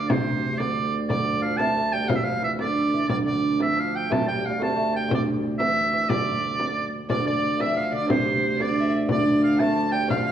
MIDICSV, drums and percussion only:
0, 0, Header, 1, 2, 480
1, 0, Start_track
1, 0, Key_signature, -1, "minor"
1, 0, Tempo, 332963
1, 137, Time_signature, 6, 3, 24, 8
1, 14874, End_track
2, 0, Start_track
2, 0, Title_t, "Frame drum"
2, 141, Note_on_c, 9, 64, 90
2, 285, Note_off_c, 9, 64, 0
2, 405, Note_on_c, 9, 64, 27
2, 549, Note_off_c, 9, 64, 0
2, 647, Note_on_c, 9, 64, 25
2, 791, Note_off_c, 9, 64, 0
2, 869, Note_on_c, 9, 64, 57
2, 1013, Note_off_c, 9, 64, 0
2, 1108, Note_on_c, 9, 64, 22
2, 1253, Note_off_c, 9, 64, 0
2, 1583, Note_on_c, 9, 64, 74
2, 1727, Note_off_c, 9, 64, 0
2, 1834, Note_on_c, 9, 64, 23
2, 1978, Note_off_c, 9, 64, 0
2, 2067, Note_on_c, 9, 64, 25
2, 2211, Note_off_c, 9, 64, 0
2, 2300, Note_on_c, 9, 64, 60
2, 2444, Note_off_c, 9, 64, 0
2, 2527, Note_on_c, 9, 64, 25
2, 2671, Note_off_c, 9, 64, 0
2, 3019, Note_on_c, 9, 64, 90
2, 3163, Note_off_c, 9, 64, 0
2, 3492, Note_on_c, 9, 64, 26
2, 3637, Note_off_c, 9, 64, 0
2, 3735, Note_on_c, 9, 64, 60
2, 3879, Note_off_c, 9, 64, 0
2, 4463, Note_on_c, 9, 64, 75
2, 4607, Note_off_c, 9, 64, 0
2, 4713, Note_on_c, 9, 64, 23
2, 4857, Note_off_c, 9, 64, 0
2, 4966, Note_on_c, 9, 64, 25
2, 5110, Note_off_c, 9, 64, 0
2, 5193, Note_on_c, 9, 64, 62
2, 5337, Note_off_c, 9, 64, 0
2, 5447, Note_on_c, 9, 64, 25
2, 5591, Note_off_c, 9, 64, 0
2, 5933, Note_on_c, 9, 64, 90
2, 6077, Note_off_c, 9, 64, 0
2, 6181, Note_on_c, 9, 64, 27
2, 6325, Note_off_c, 9, 64, 0
2, 6414, Note_on_c, 9, 64, 28
2, 6558, Note_off_c, 9, 64, 0
2, 6656, Note_on_c, 9, 64, 65
2, 6800, Note_off_c, 9, 64, 0
2, 6905, Note_on_c, 9, 64, 27
2, 7049, Note_off_c, 9, 64, 0
2, 7368, Note_on_c, 9, 64, 86
2, 7512, Note_off_c, 9, 64, 0
2, 7610, Note_on_c, 9, 64, 28
2, 7754, Note_off_c, 9, 64, 0
2, 7846, Note_on_c, 9, 64, 26
2, 7991, Note_off_c, 9, 64, 0
2, 8077, Note_on_c, 9, 64, 63
2, 8221, Note_off_c, 9, 64, 0
2, 8321, Note_on_c, 9, 64, 26
2, 8465, Note_off_c, 9, 64, 0
2, 8789, Note_on_c, 9, 64, 79
2, 8933, Note_off_c, 9, 64, 0
2, 9033, Note_on_c, 9, 64, 25
2, 9177, Note_off_c, 9, 64, 0
2, 9269, Note_on_c, 9, 64, 24
2, 9413, Note_off_c, 9, 64, 0
2, 9508, Note_on_c, 9, 64, 58
2, 9652, Note_off_c, 9, 64, 0
2, 9752, Note_on_c, 9, 64, 24
2, 9897, Note_off_c, 9, 64, 0
2, 10227, Note_on_c, 9, 64, 79
2, 10372, Note_off_c, 9, 64, 0
2, 10479, Note_on_c, 9, 64, 25
2, 10623, Note_off_c, 9, 64, 0
2, 10718, Note_on_c, 9, 64, 25
2, 10863, Note_off_c, 9, 64, 0
2, 10958, Note_on_c, 9, 64, 61
2, 11102, Note_off_c, 9, 64, 0
2, 11208, Note_on_c, 9, 64, 24
2, 11352, Note_off_c, 9, 64, 0
2, 11676, Note_on_c, 9, 64, 87
2, 11820, Note_off_c, 9, 64, 0
2, 11917, Note_on_c, 9, 64, 25
2, 12061, Note_off_c, 9, 64, 0
2, 12161, Note_on_c, 9, 64, 24
2, 12305, Note_off_c, 9, 64, 0
2, 12400, Note_on_c, 9, 64, 63
2, 12544, Note_off_c, 9, 64, 0
2, 12640, Note_on_c, 9, 64, 24
2, 12784, Note_off_c, 9, 64, 0
2, 13100, Note_on_c, 9, 64, 79
2, 13244, Note_off_c, 9, 64, 0
2, 13359, Note_on_c, 9, 64, 25
2, 13503, Note_off_c, 9, 64, 0
2, 13598, Note_on_c, 9, 64, 25
2, 13742, Note_off_c, 9, 64, 0
2, 13843, Note_on_c, 9, 64, 62
2, 13987, Note_off_c, 9, 64, 0
2, 14086, Note_on_c, 9, 64, 24
2, 14230, Note_off_c, 9, 64, 0
2, 14565, Note_on_c, 9, 64, 85
2, 14710, Note_off_c, 9, 64, 0
2, 14796, Note_on_c, 9, 64, 26
2, 14874, Note_off_c, 9, 64, 0
2, 14874, End_track
0, 0, End_of_file